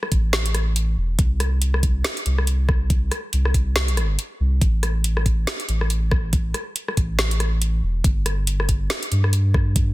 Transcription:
0.03 cross-stick medium
0.12 0.96 A1 loud
0.12 kick medium
0.12 closed hi-hat medium
0.33 snare loud
0.33 closed hi-hat medium
0.46 closed hi-hat medium
0.55 cross-stick medium
0.55 closed hi-hat medium
0.76 closed hi-hat medium
0.97 1.17 E1 loud
1.19 2.03 C2 loud
1.19 kick loud
1.19 closed hi-hat medium
1.40 cross-stick medium
1.40 closed hi-hat soft
1.62 closed hi-hat medium
1.74 cross-stick medium
1.83 kick medium
1.83 closed hi-hat medium
2.04 snare loud
2.04 closed hi-hat medium
2.17 closed hi-hat medium
2.26 3.10 C2 loud
2.26 closed hi-hat soft
2.38 cross-stick medium
2.47 closed hi-hat medium
2.69 kick loud
2.69 cross-stick medium
2.90 kick loud
2.90 closed hi-hat medium
3.11 cross-stick medium
3.11 closed hi-hat soft
3.33 4.17 C2 loud
3.33 closed hi-hat medium
3.45 cross-stick medium
3.54 kick medium
3.54 closed hi-hat soft
3.76 snare loud
3.76 closed hi-hat medium
3.88 closed hi-hat medium
3.97 cross-stick medium
3.97 closed hi-hat soft
4.19 closed hi-hat medium
4.40 4.60 C2 loud
4.61 5.46 A1 medium
4.61 kick loud
4.61 closed hi-hat medium
4.83 cross-stick medium
4.83 closed hi-hat soft
5.04 closed hi-hat medium
5.17 cross-stick medium
5.26 kick medium
5.26 closed hi-hat medium
5.47 snare loud
5.47 closed hi-hat medium
5.60 closed hi-hat medium
5.69 6.53 A1 loud
5.69 closed hi-hat medium
5.81 cross-stick medium
5.90 closed hi-hat medium
6.11 kick loud
6.11 cross-stick medium
6.33 kick loud
6.33 closed hi-hat medium
6.54 cross-stick medium
6.54 closed hi-hat soft
6.76 closed hi-hat medium
6.88 cross-stick medium
6.97 7.82 A1 loud
6.97 kick medium
6.97 closed hi-hat medium
7.19 snare loud
7.19 closed hi-hat medium
7.31 closed hi-hat medium
7.40 cross-stick medium
7.40 closed hi-hat medium
7.62 closed hi-hat medium
7.83 8.03 E1 medium
8.04 8.89 G1 loud
8.04 kick loud
8.04 closed hi-hat medium
8.26 cross-stick soft
8.26 closed hi-hat medium
8.47 closed hi-hat medium
8.60 cross-stick medium
8.69 kick medium
8.69 closed hi-hat medium
8.90 snare loud
8.90 closed hi-hat medium
9.03 closed hi-hat medium
9.11 9.94 G2 loud
9.11 closed hi-hat medium
9.24 cross-stick medium
9.33 closed hi-hat medium
9.54 kick loud
9.54 cross-stick medium
9.76 kick loud
9.76 closed hi-hat medium

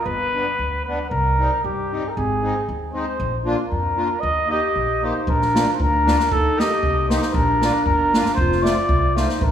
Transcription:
0.05 0.40 G1 medium
0.05 0.82 B4 loud
0.34 0.45 G3 medium
0.34 0.46 B3 soft
0.34 0.46 D4 medium
0.59 0.93 D2 medium
0.85 0.98 G3 soft
0.85 0.99 B3 soft
0.85 0.99 D4 medium
0.85 1.09 B4 medium
1.10 1.46 C2 medium
1.10 1.60 A#4 medium
1.39 1.50 G3 medium
1.39 1.51 C4 soft
1.39 1.51 D#4 medium
1.64 1.98 G2 medium
1.64 2.10 G4 medium
1.92 2.03 G3 medium
1.92 2.03 C4 soft
1.92 2.03 D#4 medium
2.09 2.17 A#4 soft
2.16 2.50 G#1 medium
2.16 2.67 G#4 medium
2.42 2.54 G#3 medium
2.42 2.54 C4 medium
2.42 2.54 D#4 medium
2.68 3.02 D#2 medium
2.93 3.05 G#3 medium
2.93 3.05 C4 soft
2.93 3.06 D#4 medium
2.93 3.42 C5 medium
3.20 3.53 A#1 medium
3.45 3.56 A#3 medium
3.45 3.56 D4 medium
3.45 3.57 F4 medium
3.68 4.05 F2 medium
3.68 4.22 A#4 medium
3.96 4.08 A#3 medium
3.96 4.08 D4 soft
3.96 4.08 F4 medium
4.20 4.57 D#2 medium
4.20 4.49 D#5 loud
4.47 4.59 A#3 medium
4.47 4.60 D#4 medium
4.47 4.60 G4 medium
4.51 5.06 G4 medium
4.51 5.06 D#5 medium
4.76 5.09 A#1 medium
5.02 5.13 A#3 medium
5.02 5.14 D#4 soft
5.02 5.29 D#4 medium
5.02 5.14 G4 medium
5.02 5.31 C5 medium
5.27 5.62 A#1 medium
5.27 5.73 D4 medium
5.27 5.73 A#4 loud
5.27 kick medium
5.42 snare soft
5.54 5.66 A#3 medium
5.54 5.66 D4 medium
5.54 5.66 F4 medium
5.54 snare medium
5.73 5.83 D#4 medium
5.73 5.83 C5 medium
5.80 6.14 D2 medium
5.80 6.34 D4 medium
5.80 6.33 A#4 medium
5.80 kick medium
6.05 6.17 A#3 soft
6.05 6.17 D4 soft
6.05 6.18 F4 medium
6.05 snare medium
6.20 snare medium
6.32 6.65 D#2 medium
6.32 6.62 D#4 medium
6.32 6.61 A4 loud
6.32 kick medium
6.55 6.68 A#3 medium
6.55 6.68 D#4 medium
6.55 6.68 G4 medium
6.59 7.11 G4 medium
6.59 7.08 D#5 medium
6.59 snare medium
6.83 7.16 C2 medium
6.83 kick medium
7.09 7.20 A#3 medium
7.09 7.21 D#4 medium
7.09 7.36 D#4 medium
7.09 7.21 G4 medium
7.09 7.34 C5 medium
7.09 snare medium
7.22 snare medium
7.33 7.68 A#1 medium
7.33 7.86 D4 medium
7.33 7.84 A#4 loud
7.33 kick medium
7.61 7.72 A#3 medium
7.61 7.72 D4 medium
7.61 7.73 F4 medium
7.61 snare medium
7.85 8.20 G1 medium
7.85 8.34 D4 medium
7.85 8.33 A#4 medium
7.85 kick medium
8.13 8.24 A#3 medium
8.13 8.24 D4 medium
8.13 8.24 F4 medium
8.13 snare medium
8.25 snare soft
8.34 8.71 F1 medium
8.34 8.65 C5 loud
8.34 kick medium
8.39 8.65 F4 medium
8.52 snare soft
8.62 8.74 A3 medium
8.62 8.74 C4 soft
8.62 8.74 F4 medium
8.62 9.18 F4 medium
8.62 9.19 D5 medium
8.62 snare medium
8.89 9.23 C2 medium
8.89 kick medium
9.14 9.26 A3 medium
9.14 9.26 C4 soft
9.14 9.44 D#4 medium
9.14 9.27 F4 medium
9.14 9.44 C5 medium
9.14 snare medium
9.29 snare medium
9.41 9.52 A#1 medium
9.41 9.52 D4 medium
9.41 9.52 A#4 medium
9.41 kick medium

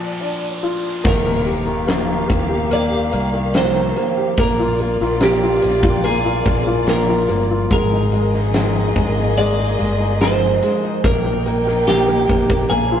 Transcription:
0.00 1.01 A#2 medium
0.00 1.01 F3 soft
0.00 0.60 D5 medium
0.00 riser medium
0.21 1.02 D4 soft
0.63 1.03 F4 soft
1.04 2.26 D#2 medium
1.04 1.65 D#3 medium
1.04 4.34 A#3 medium
1.04 4.34 G4 medium
1.04 2.73 A#4 medium
1.04 4.34 F5 medium
1.04 kick loud
1.04 crash medium
1.04 impact medium
1.26 1.86 A#3 soft
1.46 2.47 G4 soft
1.46 closed hi-hat medium
1.66 2.06 D#3 medium
1.87 2.26 A#3 medium
1.87 snare loud
1.87 closed hi-hat medium
2.08 3.32 D#3 medium
2.27 3.09 D#2 medium
2.27 2.69 A#3 soft
2.27 kick medium
2.27 closed hi-hat medium
2.49 2.89 G4 medium
2.70 3.11 A#3 medium
2.70 3.57 D5 medium
2.70 closed hi-hat medium
2.91 4.16 G4 soft
3.12 3.93 C2 medium
3.12 3.53 A#3 medium
3.12 closed hi-hat medium
3.34 3.74 D#3 soft
3.54 3.95 A#3 medium
3.54 4.39 C5 medium
3.54 snare loud
3.54 closed hi-hat medium
3.75 4.36 D#3 medium
3.96 4.37 A#3 medium
3.96 closed hi-hat medium
4.17 4.37 G4 soft
4.37 4.97 A#1 medium
4.37 4.79 A#3 medium
4.37 7.68 A#3 medium
4.37 7.68 F4 medium
4.37 5.25 A#4 medium
4.37 7.68 D5 medium
4.37 kick loud
4.37 closed hi-hat medium
4.59 5.00 F4 soft
4.79 5.20 A#3 soft
4.79 closed hi-hat medium
5.00 5.59 A#1 medium
5.00 5.41 F4 medium
5.00 snare soft
5.20 5.61 A#3 medium
5.20 6.04 G4 medium
5.20 snare loud
5.20 closed hi-hat medium
5.43 5.82 F4 medium
5.62 6.43 A#1 medium
5.62 6.02 A#3 medium
5.62 closed hi-hat medium
5.83 6.23 F4 medium
5.83 kick loud
6.04 6.44 A#3 medium
6.04 6.84 G#4 medium
6.04 closed hi-hat medium
6.25 6.65 F4 medium
6.46 7.25 A#1 medium
6.46 6.86 A#3 medium
6.46 kick medium
6.46 closed hi-hat medium
6.67 7.07 F4 medium
6.87 7.27 A#3 medium
6.87 7.48 A#4 medium
6.87 snare loud
6.87 closed hi-hat medium
7.09 7.49 F4 soft
7.29 7.68 G1 medium
7.29 7.70 A#3 medium
7.29 closed hi-hat medium
7.51 7.71 F4 medium
7.70 8.92 G#1 loud
7.70 8.11 G#3 medium
7.70 11.01 A#3 medium
7.70 11.01 G#4 medium
7.70 9.37 A#4 medium
7.70 11.01 D#5 medium
7.70 kick loud
7.70 closed hi-hat medium
7.92 8.33 D#4 soft
8.12 8.53 G#3 medium
8.12 closed hi-hat medium
8.34 8.74 D#4 medium
8.34 snare soft
8.54 8.95 G#3 medium
8.54 snare loud
8.54 closed hi-hat medium
8.76 9.16 D#4 medium
8.96 9.76 G#1 medium
8.96 9.36 G#3 soft
8.96 kick medium
8.96 closed hi-hat medium
9.18 9.58 D#4 medium
9.37 9.78 G#3 medium
9.37 10.21 D5 medium
9.37 closed hi-hat medium
9.59 9.99 D#4 medium
9.79 10.59 G1 medium
9.79 10.19 G#3 medium
9.79 closed hi-hat medium
10.00 10.41 D#4 soft
10.20 10.61 G#3 medium
10.20 11.04 C5 medium
10.20 snare medium
10.20 closed hi-hat medium
10.42 10.83 D#4 medium
10.63 11.03 G#3 medium
10.63 closed hi-hat medium
10.84 11.04 D#4 medium
11.04 12.25 A#1 loud
11.04 11.24 A#3 medium
11.04 12.68 D#4 medium
11.04 11.84 A#4 medium
11.04 12.69 A#4 medium
11.04 12.69 G5 medium
11.04 kick loud
11.04 closed hi-hat medium
11.25 11.44 A#3 soft
11.46 11.66 A#3 medium
11.46 closed hi-hat medium
11.67 11.86 A#3 medium
11.67 snare soft
11.87 12.07 A#3 medium
11.87 12.67 G4 medium
11.87 snare loud
11.87 closed hi-hat medium
12.08 12.28 A#3 medium
12.29 12.69 A#1 medium
12.29 12.48 A#3 medium
12.29 kick medium
12.29 closed hi-hat medium
12.50 12.68 A#3 medium
12.50 kick medium
12.70 13.00 A#1 loud
12.70 13.00 A#3 medium
12.70 13.00 D4 medium
12.70 13.00 G#4 medium
12.70 13.00 C5 medium
12.70 13.00 F5 medium
12.70 closed hi-hat medium
12.92 13.00 F4 medium

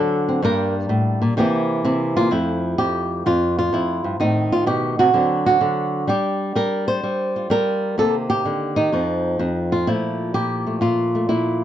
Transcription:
0.00 0.40 D3 medium
0.00 0.40 F#3 medium
0.00 0.27 C4 medium
0.00 0.41 D4 medium
0.00 0.43 A4 loud
0.29 0.41 C4 medium
0.42 0.89 G2 medium
0.42 1.35 G3 medium
0.42 1.35 A#3 medium
0.42 1.35 D4 medium
0.42 0.75 A#4 loud
0.89 1.21 A2 medium
1.22 1.36 A#2 medium
1.37 1.83 C3 medium
1.37 2.29 E3 medium
1.37 2.16 A#3 medium
1.37 1.84 E4 medium
1.37 2.16 G4 medium
1.85 2.29 C3 medium
1.85 2.29 E4 medium
2.17 2.29 A#3 medium
2.17 2.31 F4 loud
2.31 2.77 F2 medium
2.31 4.18 F3 soft
2.31 4.19 A3 soft
2.31 3.25 E4 medium
2.78 3.25 F2 medium
2.78 3.25 G4 medium
3.26 3.71 F2 medium
3.26 3.57 F4 medium
3.59 4.20 F4 medium
3.73 4.04 F2 medium
3.73 4.20 E4 medium
4.04 4.19 G2 medium
4.20 5.12 A2 medium
4.20 5.14 D#3 soft
4.20 5.13 C4 soft
4.20 4.99 D#4 medium
4.52 4.67 F4 medium
4.66 4.98 B2 medium
4.66 4.99 G4 medium
4.99 5.13 C3 medium
4.99 5.45 F#4 medium
5.13 5.60 D3 medium
5.13 6.07 F#3 soft
5.13 6.07 C4 soft
5.13 6.07 D4 soft
5.46 6.09 F#4 medium
5.61 6.07 D3 medium
6.08 6.54 G3 medium
6.08 7.96 D4 soft
6.08 7.04 G4 loud
6.55 7.02 G3 medium
6.55 6.87 A#4 loud
6.88 7.50 C5 loud
7.03 7.49 G3 medium
7.36 7.96 F4 soft
7.50 7.96 G3 medium
7.50 7.98 A#4 loud
7.98 8.45 C3 medium
7.98 8.76 D#3 soft
7.98 8.91 A#3 soft
7.98 8.75 D#4 soft
7.98 8.14 A4 loud
8.30 8.92 G4 loud
8.45 8.77 D3 medium
8.76 8.92 D#3 medium
8.76 9.87 D#4 medium
8.92 9.38 F2 medium
8.92 9.88 F3 soft
8.92 9.39 C4 soft
9.39 9.87 F2 medium
9.39 9.85 C4 soft
9.72 9.87 F4 medium
9.87 10.34 A#2 medium
9.87 11.64 F3 soft
9.87 10.65 A3 soft
9.87 10.82 E4 medium
10.34 10.80 A#2 medium
10.34 10.81 G4 medium
10.67 11.14 A3 soft
10.81 11.28 A#2 medium
10.81 11.64 F4 medium
11.15 11.64 A3 soft
11.29 11.64 A#2 medium
11.29 11.64 E4 medium

